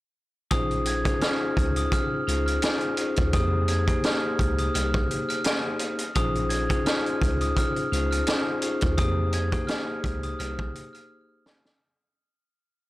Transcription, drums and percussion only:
0.51 kick loud
0.51 closed hi-hat loud
0.71 closed hi-hat soft
0.85 closed hi-hat medium
1.05 kick loud
1.05 closed hi-hat medium
1.21 snare loud
1.21 closed hi-hat medium
1.57 kick medium
1.57 closed hi-hat medium
1.76 closed hi-hat medium
1.92 kick medium
1.92 closed hi-hat medium
2.28 closed hi-hat medium
2.48 closed hi-hat medium
2.62 snare loud
2.62 closed hi-hat loud
2.81 closed hi-hat soft
2.97 closed hi-hat medium
3.16 kick loud
3.16 closed hi-hat medium
3.33 kick loud
3.33 closed hi-hat medium
3.68 closed hi-hat medium
3.88 kick loud
3.88 closed hi-hat medium
4.04 snare loud
4.04 closed hi-hat medium
4.39 kick medium
4.39 closed hi-hat medium
4.58 closed hi-hat medium
4.75 closed hi-hat medium
4.94 kick loud
5.11 closed hi-hat medium
5.30 closed hi-hat medium
5.44 snare loud
5.44 closed hi-hat loud
5.79 closed hi-hat medium
5.99 closed hi-hat medium
6.15 kick loud
6.15 closed hi-hat medium
6.35 closed hi-hat soft
6.50 closed hi-hat medium
6.70 kick loud
6.70 closed hi-hat medium
6.86 snare loud
6.86 closed hi-hat medium
7.06 closed hi-hat soft
7.22 kick medium
7.22 closed hi-hat medium
7.41 closed hi-hat soft
7.57 kick medium
7.57 closed hi-hat medium
7.76 closed hi-hat soft
7.93 closed hi-hat medium
8.12 closed hi-hat medium
8.27 snare loud
8.27 closed hi-hat loud
8.62 closed hi-hat medium
8.81 kick loud
8.81 closed hi-hat medium
8.98 kick loud
8.98 closed hi-hat loud
9.33 closed hi-hat medium
9.52 kick loud
9.52 closed hi-hat medium
9.68 snare loud
9.68 closed hi-hat medium
10.04 kick medium
10.04 closed hi-hat medium
10.23 closed hi-hat medium
10.40 closed hi-hat medium
10.59 kick medium
10.75 closed hi-hat medium
10.94 closed hi-hat medium
11.46 snare medium
11.65 snare medium

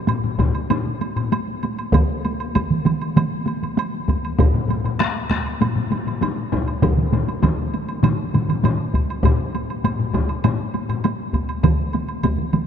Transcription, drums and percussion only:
0.07 taiko low-mid medium
0.07 taiko high medium
0.07 high woodblock medium
0.24 taiko low-mid medium
0.24 taiko high soft
0.39 taiko medium
0.39 taiko low-mid medium
0.39 taiko high medium
0.39 high woodblock soft
0.54 taiko high soft
0.54 high woodblock soft
0.70 taiko low-mid loud
0.70 taiko high medium
0.70 high woodblock medium
0.86 taiko high soft
1.01 taiko high medium
1.01 high woodblock soft
1.16 taiko low-mid medium
1.16 taiko high soft
1.16 high woodblock soft
1.32 taiko high medium
1.32 high woodblock medium
1.48 taiko high soft
1.63 taiko high medium
1.63 high woodblock soft
1.79 taiko high soft
1.79 high woodblock soft
1.93 taiko loud
1.93 taiko mid medium
1.93 taiko high medium
1.93 high woodblock medium
2.10 taiko high soft
2.25 taiko high medium
2.25 high woodblock soft
2.40 high woodblock soft
2.55 taiko medium
2.55 taiko mid medium
2.55 taiko high medium
2.55 high woodblock medium
2.70 taiko mid medium
2.70 taiko high soft
2.85 taiko mid loud
2.85 taiko high medium
2.85 high woodblock soft
3.01 taiko high soft
3.01 high woodblock soft
3.16 taiko mid loud
3.16 taiko high medium
3.16 high woodblock medium
3.32 taiko high soft
3.47 taiko high medium
3.47 high woodblock soft
3.62 taiko mid medium
3.62 taiko high soft
3.62 high woodblock soft
3.77 taiko high medium
3.77 high woodblock medium
3.93 taiko high soft
4.08 taiko medium
4.08 taiko high medium
4.08 high woodblock soft
4.23 taiko high soft
4.23 high woodblock soft
4.39 taiko medium
4.39 taiko low-mid medium
4.39 taiko high medium
4.39 high woodblock soft
4.54 taiko low-mid medium
4.54 taiko high soft
4.69 taiko low-mid medium
4.69 taiko high medium
4.69 high woodblock soft
4.84 taiko low-mid medium
4.84 high woodblock soft
5.00 taiko rim medium
5.00 taiko high medium
5.00 high woodblock soft
5.15 taiko high soft
5.31 taiko rim medium
5.31 taiko medium
5.31 taiko high medium
5.31 high woodblock soft
5.46 high woodblock soft
5.61 taiko low-mid medium
5.61 taiko high medium
5.61 high woodblock soft
5.76 taiko low-mid medium
5.76 taiko high soft
5.91 taiko low-mid medium
5.91 taiko high medium
5.91 high woodblock soft
6.07 taiko low-mid medium
6.07 high woodblock soft
6.21 taiko low-mid loud
6.21 taiko high medium
6.21 high woodblock soft
6.37 taiko high soft
6.52 taiko medium
6.52 taiko low-mid loud
6.52 taiko high medium
6.52 high woodblock soft
6.68 taiko high soft
6.68 high woodblock soft
6.83 taiko loud
6.83 taiko low-mid medium
6.83 taiko mid medium
6.83 taiko high medium
6.83 high woodblock soft
6.97 taiko low-mid medium
6.97 taiko mid medium
6.97 taiko high soft
7.13 taiko low-mid medium
7.13 taiko mid medium
7.13 taiko high medium
7.13 high woodblock soft
7.28 taiko high soft
7.28 high woodblock soft
7.43 taiko medium
7.43 taiko low-mid loud
7.43 taiko mid medium
7.43 taiko high medium
7.43 high woodblock soft
7.58 taiko high soft
7.74 taiko high medium
7.74 high woodblock soft
7.89 taiko high soft
7.89 high woodblock soft
8.03 taiko low-mid loud
8.03 taiko mid loud
8.03 taiko high medium
8.03 high woodblock medium
8.19 taiko high soft
8.34 taiko low-mid medium
8.34 taiko mid medium
8.34 taiko high medium
8.34 high woodblock soft
8.49 taiko low-mid medium
8.49 taiko mid medium
8.49 taiko high soft
8.49 high woodblock soft
8.64 taiko low-mid loud
8.64 taiko mid loud
8.64 taiko high medium
8.64 high woodblock soft
8.79 taiko high soft
8.94 taiko medium
8.94 taiko high soft
8.94 high woodblock soft
9.09 taiko high soft
9.09 high woodblock soft
9.23 taiko medium
9.23 taiko low-mid medium
9.23 taiko high medium
9.23 high woodblock medium
9.40 taiko high soft
9.55 taiko high soft
9.55 high woodblock soft
9.70 high woodblock soft
9.84 taiko low-mid medium
9.84 taiko high medium
9.84 high woodblock soft
9.99 taiko low-mid medium
9.99 taiko high soft
10.13 taiko medium
10.13 taiko low-mid medium
10.13 taiko high medium
10.13 high woodblock soft
10.29 taiko high soft
10.29 high woodblock soft
10.44 taiko low-mid medium
10.44 taiko high medium
10.44 high woodblock soft
10.59 taiko high soft
10.74 taiko high medium
10.74 high woodblock soft
10.89 taiko low-mid medium
10.89 taiko high soft
10.89 high woodblock soft
11.04 taiko high medium
11.04 high woodblock medium
11.20 taiko high soft
11.33 taiko medium
11.33 taiko high medium
11.33 high woodblock soft
11.49 taiko high soft
11.49 high woodblock soft
11.63 taiko medium
11.63 taiko mid medium
11.63 taiko high medium
11.63 high woodblock soft
11.79 taiko high soft
11.93 taiko high medium
11.93 high woodblock soft
12.08 high woodblock soft
12.23 taiko medium
12.23 taiko mid medium
12.23 taiko high medium
12.23 high woodblock medium
12.38 taiko mid medium
12.38 taiko high soft
12.53 taiko mid medium
12.53 taiko high medium
12.53 high woodblock soft

